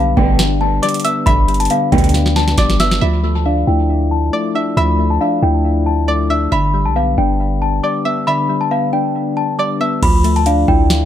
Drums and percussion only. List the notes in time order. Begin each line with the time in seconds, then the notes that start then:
0.17 kick
0.39 snare, closed hi-hat
0.83 closed hi-hat
0.89 closed hi-hat
0.94 closed hi-hat
1.00 closed hi-hat
1.05 closed hi-hat
1.27 kick, closed hi-hat
1.48 closed hi-hat, open hi-hat
1.54 closed hi-hat
1.60 closed hi-hat
1.65 closed hi-hat
1.70 closed hi-hat
1.92 kick, closed hi-hat
1.98 closed hi-hat
2.04 closed hi-hat
2.09 closed hi-hat
2.14 snare, closed hi-hat
2.26 snare
2.36 snare
2.48 snare
2.58 kick, snare, closed hi-hat
2.70 snare
2.80 snare, closed hi-hat
2.91 snare
10.03 kick, closed hi-hat, crash
10.24 closed hi-hat, open hi-hat
10.36 closed hi-hat
10.46 closed hi-hat
10.68 kick
10.90 snare, closed hi-hat